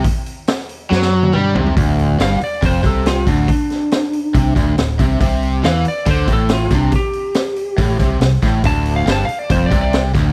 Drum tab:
HH |o-o-o-o---------|o-o-o-o-o-o-o-o-|o-o-o-o-o-o-o-o-|o-o-o-o-o-o-o-o-|
SD |----o---oo------|----o-------o---|--o-o-------o---|----o-------o-o-|
T1 |-----------o----|----------------|----------------|----------------|
T2 |------------o---|----------------|----------------|----------------|
FT |--------------oo|----------------|----------------|----------------|
BD |o---------------|o-------o-o---o-|o-------o-o---o-|o-------o-o---o-|

HH |o-o-o-o-o-o-o-o-|o-o-o-o-o-o-o-o-|
SD |----o-------o-o-|----o-------o-o-|
T1 |----------------|----------------|
T2 |----------------|----------------|
FT |----------------|----------------|
BD |o-------o-o---o-|o-------o-o---o-|